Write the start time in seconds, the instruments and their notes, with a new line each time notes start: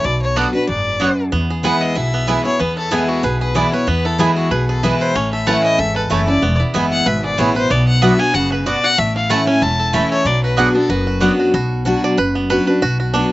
0.04 upright bass B1, steel-string acoustic guitar B2, fiddle D5
0.22 fiddle C#5
0.36 steel-string acoustic guitar F#3 B3 D4 F#4, mandolin B3 F#4 D5 F#5, five-string banjo B3 F#4, fiddle A4
0.53 steel-string acoustic guitar D4 F#4, fiddle B4
0.67 upright bass F#1, steel-string acoustic guitar G#2, fiddle D5
1.00 steel-string acoustic guitar F#2, mandolin B3 F#4 D5 F#5, five-string banjo B3 F#4
1.32 steel-string acoustic guitar E2, upright bass E2, five-string banjo B3
1.50 five-string banjo G#4
1.63 steel-string acoustic guitar E3 G#3 B3 E4, mandolin B3 E4 B4 G#5, five-string banjo B4, fiddle F#5
1.81 five-string banjo G#4, fiddle D#5
1.95 upright bass B1, steel-string acoustic guitar B2, five-string banjo E4, fiddle E5
2.14 five-string banjo B3
2.27 steel-string acoustic guitar E3 G#3 B3 E4, mandolin B3 E4 B4 G#5, five-string banjo E4
2.45 steel-string acoustic guitar B3 E4, five-string banjo G#4, fiddle C#5
2.60 steel-string acoustic guitar E2, upright bass E2, five-string banjo B3, fiddle B4
2.77 five-string banjo E4, fiddle A4
2.91 steel-string acoustic guitar E3 G#3 B3 E4, mandolin B3 E4 B4 G#5, five-string banjo B3, fiddle G#4
3.08 fiddle F#4, five-string banjo G#4
3.23 upright bass B1, steel-string acoustic guitar B2, fiddle G#4, five-string banjo B4
3.41 five-string banjo G#4, fiddle B4
3.55 steel-string acoustic guitar E3 G#3 B3 E4, mandolin B3 E4 B4 G#5, five-string banjo E4, fiddle D5
3.72 steel-string acoustic guitar B3 E4, five-string banjo B4, fiddle C#5
3.87 steel-string acoustic guitar E2, upright bass E2, five-string banjo B3, fiddle B4
4.05 five-string banjo E4, fiddle A4
4.18 steel-string acoustic guitar E3 G#3 B3 E4, mandolin B3 E4 B4 G#5, five-string banjo B3, fiddle G#4
4.36 fiddle F#4, five-string banjo G#4
4.51 upright bass B1, steel-string acoustic guitar B2, fiddle G#4, five-string banjo B4
4.69 five-string banjo G#4, fiddle A4
4.83 steel-string acoustic guitar E3 G#3 B3 E4, mandolin B3 E4 B4 G#5, five-string banjo E4, fiddle B4
5.01 five-string banjo B4, fiddle C5
5.15 upright bass A1, steel-string acoustic guitar A2, five-string banjo C#4, fiddle C#5
5.33 five-string banjo A4, fiddle E5
5.46 steel-string acoustic guitar E3 A3 C#4 E4, mandolin A3 E4 C#5 A5, five-string banjo B4, fiddle F#5
5.64 five-string banjo C#4, fiddle D#5
5.78 upright bass G#1, steel-string acoustic guitar E2, five-string banjo A4, fiddle E5
5.96 fiddle A4, five-string banjo B4
6.10 upright bass F#1, steel-string acoustic guitar E3 A3 C#4 E4, mandolin A3 E4 C#5 A5, five-string banjo A4, fiddle C#5
6.27 steel-string acoustic guitar C#4 E4, five-string banjo E4, fiddle D5
6.42 upright bass E1, steel-string acoustic guitar E2, five-string banjo B3
6.60 five-string banjo E4
6.74 upright bass F#1, steel-string acoustic guitar E3 G#3 B3 E4, mandolin B3 E4 B4 G#5, five-string banjo B3
6.92 five-string banjo G#4, fiddle F#5
7.06 upright bass G#1, steel-string acoustic guitar B2, five-string banjo B4, fiddle E5
7.24 five-string banjo G#4, fiddle D5
7.37 upright bass A1, steel-string acoustic guitar E3 G#3 B3 E4, mandolin B3 E4 B4 G#5, five-string banjo E4, fiddle C#5
7.55 steel-string acoustic guitar B3 E4, five-string banjo B4, fiddle C5
7.70 upright bass B1, steel-string acoustic guitar B2, five-string banjo B3, fiddle D5
7.88 fiddle F#5
8.02 steel-string acoustic guitar F#3 B3 D4 F#4, mandolin B3 F#4 D5 F#5, five-string banjo B4, fiddle E5
8.19 five-string banjo B3, steel-string acoustic guitar D4 F#4, fiddle G#5
8.34 upright bass F#1, steel-string acoustic guitar C#3, five-string banjo F#4, fiddle F#5
8.52 five-string banjo B4, fiddle B4
8.66 steel-string acoustic guitar B2, mandolin B3 F#4 D5 F#5, five-string banjo F#4, fiddle D5
8.84 five-string banjo F#4, fiddle F#5
8.98 upright bass A1, steel-string acoustic guitar A2, five-string banjo A3, fiddle E5
9.16 five-string banjo E4, fiddle F5
9.30 steel-string acoustic guitar E3 A3 C#4 E4, mandolin A3 E4 C#5 A5, five-string banjo A4, fiddle F#5
9.47 five-string banjo C#4, steel-string acoustic guitar C#4 E4, fiddle G#5
9.62 upright bass E1, steel-string acoustic guitar E2, five-string banjo E4, fiddle A5
9.80 five-string banjo A4
9.93 steel-string acoustic guitar E3 A3 C#4 E4, mandolin A3 E4 C#5 A5, five-string banjo C#4, fiddle E5
10.11 five-string banjo A4, fiddle C#5
10.25 upright bass B1, steel-string acoustic guitar B2, five-string banjo F#3, fiddle D5
10.44 five-string banjo F#4, fiddle B4
10.57 steel-string acoustic guitar F#3 B3 D4 F#4, mandolin B3 F#4 D5 F#5, five-string banjo F#4, fiddle G#4
10.75 five-string banjo B3, steel-string acoustic guitar D4 F#4, fiddle A4
10.89 upright bass F#1, steel-string acoustic guitar F#2, five-string banjo F#4, fiddle B4
11.07 five-string banjo F#4
11.20 steel-string acoustic guitar F#3 B3 D4 F#4, mandolin B3 F#4 D5 F#5, five-string banjo B3
11.40 five-string banjo F#4
11.54 upright bass B1, steel-string acoustic guitar B2, five-string banjo F#4
11.85 steel-string acoustic guitar F#3 B3 D4 F#4, five-string banjo F#4
12.04 five-string banjo D5
12.18 upright bass F#1, steel-string acoustic guitar F#2, five-string banjo B4
12.35 five-string banjo B3
12.50 steel-string acoustic guitar F#3 B3 D4 F#4, five-string banjo B4
12.67 steel-string acoustic guitar D4 F#4, five-string banjo B4
12.82 upright bass B1, steel-string acoustic guitar B2, five-string banjo F#4
13.00 five-string banjo F#4
13.14 steel-string acoustic guitar F#3 B3 D4 F#4, five-string banjo D4